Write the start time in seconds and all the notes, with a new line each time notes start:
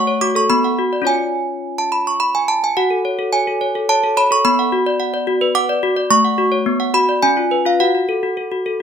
Already playing: A3 F#5 C#6
0.07 C#5
0.21 F#4 D6
0.35 A4 C#6
0.50 B3 B5
0.64 F#5
0.79 F#4
0.93 D5
1.02 C#4 F4 C#5
1.07 G#5
1.78 A5
1.92 B5
2.07 C#6
2.20 B5
2.35 G#5
2.48 A5
2.64 G#5
2.77 F#4 F#5
2.90 A4
3.05 C#5
3.19 A4
3.33 C#5 G#5
3.47 A4
3.61 C#5
3.75 A4
3.89 C#5 A5
4.04 A4
4.17 C#5 B5
4.31 A4 C#6
4.45 B3 B5
4.59 F#5
4.72 F#4
4.86 D5
5.00 F#5
5.14 D5
5.27 F#4
5.41 B4
5.55 F#5 D6
5.69 D5
5.83 F#4
5.96 D5
6.10 A3 C#6
6.25 F#5
6.38 F#4
6.52 C#5
6.66 B3
6.80 F#5
6.94 F#4 B5
7.09 D5
7.23 C#4 G#5
7.37 F4
7.51 B4
7.65 F4 F5
7.80 F#4 F#5
7.95 F#4
8.09 A4
8.23 F#4
8.37 A4
8.52 F#4
8.66 A4